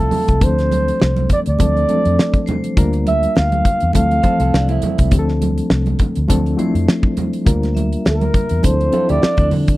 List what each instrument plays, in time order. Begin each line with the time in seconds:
Already playing: reed electric piano F3 A3 C4 E4 A4 E5, clean electric guitar F4 A4, flugelhorn A4
0.11 open hi-hat, high conga, low conga
0.28 fingered electric bass C2, kick, closed hi-hat
0.41 fingered electric bass D2, reed electric piano F3 A3 C4 D4 A4, flugelhorn C5, kick, closed hi-hat, low conga
0.59 snare, closed hi-hat
0.72 closed hi-hat, high conga
0.88 closed hi-hat
1.00 fingered electric bass C2, snare, muted conga
1.17 closed hi-hat, muted conga, high conga
1.30 flugelhorn D5, kick, closed hi-hat, low conga
1.46 fingered electric bass D2, flugelhorn D5, closed hi-hat
1.58 fingered electric bass D2, reed electric piano F3 A3 C4 D4 A4, kick, closed hi-hat, high conga
1.77 closed hi-hat, muted conga
1.88 reed electric piano E3 A3 C4 D4 A4, closed hi-hat, high conga
1.95 reed electric piano F3
2.05 fingered electric bass F2, closed hi-hat
2.19 snare, muted conga
2.34 kick, closed hi-hat, muted conga
2.46 vibraphone C5, closed hi-hat, high conga, low conga
2.64 closed hi-hat
2.76 fingered electric bass D2, reed electric piano G3 A#3 D4 F4 A#4, kick, closed hi-hat, low conga
2.93 closed hi-hat, muted conga
3.07 flugelhorn E5, closed hi-hat, high conga
3.23 closed hi-hat
3.36 fingered electric bass D2, flugelhorn F5, snare, muted conga
3.52 closed hi-hat, muted conga, high conga
3.65 kick, closed hi-hat, low conga
3.80 fingered electric bass E2, closed hi-hat
3.93 fingered electric bass D2, reed electric piano F3 A3 C4 E4 A4, flugelhorn F5, kick, closed hi-hat, muted conga, high conga
4.11 closed hi-hat, muted conga
4.23 reed electric piano E3 F3 A3 C4 A4, clean electric guitar A4 C5, kick, closed hi-hat, high conga
4.40 fingered electric bass C2, clean electric guitar F4 A4, closed hi-hat
4.54 fingered electric bass C2, clean electric guitar D4 F4, snare
4.69 clean electric guitar C4 E4, closed hi-hat, muted conga
4.82 closed hi-hat, high conga, low conga
4.98 fingered electric bass C2, kick, closed hi-hat
5.11 fingered electric bass D2, reed electric piano F3 A3 C4 D4 G4, kick, closed hi-hat, muted conga, low conga
5.19 reed electric piano A4
5.28 snare
5.42 closed hi-hat, high conga
5.58 closed hi-hat
5.70 fingered electric bass C2, snare
5.86 closed hi-hat, muted conga, high conga
5.99 kick, closed hi-hat, low conga
6.16 fingered electric bass D2, closed hi-hat
6.28 fingered electric bass D2, reed electric piano F3 A3 C4 D4 A4, kick, closed hi-hat, high conga
6.46 closed hi-hat, muted conga
6.57 reed electric piano F3 A3 C4 D4 E4, vibraphone C5, closed hi-hat, high conga
6.75 fingered electric bass F2, closed hi-hat
6.88 snare, muted conga
7.03 kick, muted conga
7.17 closed hi-hat, high conga, low conga
7.33 closed hi-hat
7.45 fingered electric bass D2, reed electric piano G3 A#3 D4 F4 A#4, kick, closed hi-hat, muted conga, low conga
7.63 snare, closed hi-hat, muted conga
7.75 vibraphone E5, closed hi-hat, high conga
7.93 closed hi-hat
8.05 fingered electric bass D2, flugelhorn A#4, snare, muted conga
8.21 closed hi-hat, muted conga, high conga
8.34 kick, closed hi-hat, low conga
8.49 fingered electric bass E2, closed hi-hat
8.61 fingered electric bass D2, reed electric piano F3 C4 D4 E4 A4, flugelhorn C5, kick, closed hi-hat, muted conga, high conga
8.81 closed hi-hat, muted conga
8.92 reed electric piano F3 C4 D4 E4 A4, clean electric guitar F4 A4, closed hi-hat, high conga
9.09 fingered electric bass D2, clean electric guitar E4 G4, flugelhorn D5, closed hi-hat
9.22 clean electric guitar D4 F4, snare, muted conga
9.37 fingered electric bass D2, clean electric guitar D4, kick, closed hi-hat, muted conga
9.51 fingered electric bass D3, open hi-hat, high conga, low conga
9.68 kick, closed hi-hat